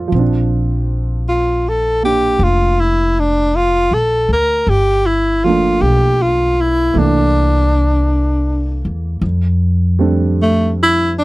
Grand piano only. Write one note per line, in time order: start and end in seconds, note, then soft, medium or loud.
0.00 0.10 G3 soft
0.00 0.11 A3 soft
0.00 0.12 C4 soft
0.00 0.13 D#4 medium
0.00 0.23 F4 soft
0.00 0.13 A4 soft
0.00 0.13 C5 soft
0.00 0.13 D5 soft
0.08 4.65 F3 soft
0.15 4.68 C4 soft
0.15 2.04 D4 medium
2.03 4.66 A#3 soft
2.03 4.68 D4 soft
5.44 6.94 F3 soft
5.44 6.94 A3 soft
5.44 6.95 A#3 soft
5.48 6.96 D4 soft
6.94 9.21 E3 soft
6.94 9.22 A3 soft
6.94 9.23 A#3 soft
6.99 9.23 D4 medium
9.99 11.24 G3 soft
9.99 11.24 A3 soft
9.99 11.24 C4 soft
9.99 11.24 D4 medium